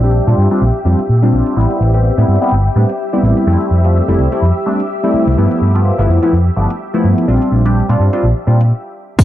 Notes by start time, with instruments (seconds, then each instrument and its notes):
Already playing: fingered electric bass A#1, string machine G4 E5
0.03 analog polysynth G3 C4 D4 G4, closed hi-hat
0.27 fingered electric bass A#2, analog polysynth G3 C4 D4 F4, closed hi-hat
0.38 fingered electric bass G2
0.51 analog polysynth G3 C4 D4 F4, closed hi-hat
0.62 fingered electric bass A#1
0.85 fingered electric bass F2, analog polysynth G3 C4 D4 F4
0.99 closed hi-hat
1.09 fingered electric bass A#2
1.22 analog polysynth G3 C4 D4 F4, closed hi-hat
1.33 fingered electric bass A#1
1.47 closed hi-hat
1.56 fingered electric bass A1, analog polysynth G3 B3 C4 E4, string machine G4 E5
1.70 closed hi-hat
1.81 fingered electric bass A1
1.94 analog polysynth G3 B3 C4 G4, closed hi-hat
2.17 fingered electric bass A2, analog polysynth G3 B3 C4 E4, closed hi-hat
2.28 fingered electric bass G2
2.41 analog polysynth G3 B3 C4 E4, closed hi-hat
2.52 fingered electric bass G1
2.76 fingered electric bass A2, analog polysynth G3 B3 C4 D4
2.89 closed hi-hat
3.13 analog polysynth G3 B3 C4 E4, closed hi-hat
3.23 fingered electric bass A1
3.37 closed hi-hat
3.47 fingered electric bass F2, analog polysynth G3 A3 C4 E4
3.61 closed hi-hat
3.71 fingered electric bass F2
3.84 analog polysynth G3 A3 C4 F4, closed hi-hat
4.08 fingered electric bass F1, analog polysynth G3 A3 C4 E4, closed hi-hat
4.18 fingered electric bass C2
4.32 analog polysynth G3 A3 C4 E4, closed hi-hat
4.42 fingered electric bass F2
4.66 analog polysynth G3 A3 C4 D4
4.80 closed hi-hat
5.03 analog polysynth G3 A3 C4 E4, closed hi-hat
5.14 muted fingered electric bass stroke
5.27 fingered electric bass C2, closed hi-hat
5.37 fingered electric bass G2, analog polysynth F3 A3 B3 E4
5.51 closed hi-hat
5.62 fingered electric bass G2
5.75 analog polysynth F3 A3 B3 F4, closed hi-hat
5.98 fingered electric bass G1, analog polysynth F3 A3 B3 E4, closed hi-hat
6.09 fingered electric bass F2
6.22 analog polysynth F3 A3 B3 E4, closed hi-hat
6.33 fingered electric bass F2
6.56 fingered electric bass G1, analog polysynth F3 A3 B3 D4
6.70 closed hi-hat
6.94 analog polysynth F3 A3 B3 E4, closed hi-hat
7.04 fingered electric bass G2
7.18 closed hi-hat
7.28 fingered electric bass A#1, analog polysynth G3 C4 D4 F4
7.42 closed hi-hat
7.52 fingered electric bass A#1
7.65 analog polysynth G3 C4 D4 G4, closed hi-hat
7.89 fingered electric bass A#2, analog polysynth G3 C4 D4 F4, closed hi-hat
8.00 fingered electric bass G2
8.13 analog polysynth G3 C4 D4 F4, closed hi-hat
8.23 fingered electric bass A#1
8.47 fingered electric bass A#2, analog polysynth G3 C4 D4 F4
8.61 closed hi-hat
9.18 fingered electric bass A1, analog polysynth G3 B3 C4 E4, kick, closed hi-hat, crash, shaker